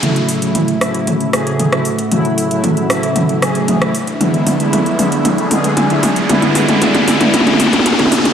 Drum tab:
HH |x-x-o-x-x-x-o-x-x-x-o-x-x-x-o-x-|x-x-o-x-x-x-o-x-x-x-o-x-x-x-o-x-|x-x-o-x-x-x-o-x-x-x-o-x-x-x-o-x-|x-x-o-x-x-x-o-x-x-x-o-x-x-x-o-x-|
SD |------------r-------r-----r-----|------------r-------r-----r-----|--------------------------------|--------------------------------|
T2 |o-------o-------o-------o-------|o-------o-------o-------o-------|o---o---o---o---o---o---o---o---|o-o-o-o-o-o-o-o-ooooooooooooooo-|